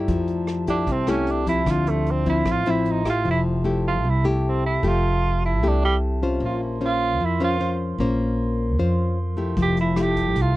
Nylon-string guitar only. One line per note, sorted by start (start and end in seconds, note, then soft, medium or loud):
0.00 0.65 A3 medium
0.00 0.65 E4 medium
0.00 0.65 G4 medium
0.09 0.86 F3 medium
0.68 1.04 A3 medium
0.68 1.04 E4 medium
0.68 1.04 G4 medium
0.88 1.65 C3 medium
1.08 1.44 A3 medium
1.08 1.44 E4 medium
1.08 1.44 G4 medium
1.46 2.23 F3 medium
1.46 2.23 C4 medium
1.46 2.23 E4 medium
1.66 2.44 D3 medium
2.26 2.62 F3 medium
2.26 2.63 C4 medium
2.26 2.63 E4 medium
2.45 3.23 A2 medium
2.66 3.03 F3 medium
2.66 3.02 C4 medium
2.66 3.03 E4 medium
3.05 3.63 A3 medium
3.05 3.63 E4 medium
3.05 3.63 G4 medium
3.25 4.02 F3 medium
3.64 4.04 A3 medium
3.64 4.04 E4 medium
3.64 4.04 G4 medium
4.05 4.81 C3 medium
4.24 4.80 A3 medium
4.24 4.80 E4 medium
4.24 4.81 G4 medium
4.83 5.60 F3 medium
4.83 5.59 A3 medium
4.83 5.60 G4 medium
5.63 6.40 C3 medium
5.63 6.19 A3 medium
5.63 6.19 E4 medium
5.63 6.19 G4 medium
6.23 6.78 C#4 medium
6.23 6.78 F4 medium
6.23 6.78 C5 medium
6.41 7.18 A#3 medium
6.81 7.20 C#4 medium
6.81 7.20 F4 medium
6.81 7.20 C5 medium
7.20 7.97 F3 medium
7.40 7.57 C#4 medium
7.40 7.57 F4 medium
7.40 7.57 C5 medium
7.60 7.96 C#4 medium
7.60 7.96 F4 medium
7.60 7.96 C5 medium
8.00 8.77 A#3 medium
8.00 8.75 C#4 medium
8.00 8.76 F4 medium
8.00 8.76 C5 medium
8.79 9.56 F3 medium
8.79 9.18 C#4 medium
8.79 9.18 F4 medium
8.79 9.18 C5 medium
9.37 9.93 A3 medium
9.37 9.93 E4 medium
9.37 9.94 G4 medium
9.57 10.34 F3 medium
9.97 10.53 A3 medium
9.97 10.53 E4 medium
9.97 10.53 G4 medium
10.36 10.56 C3 medium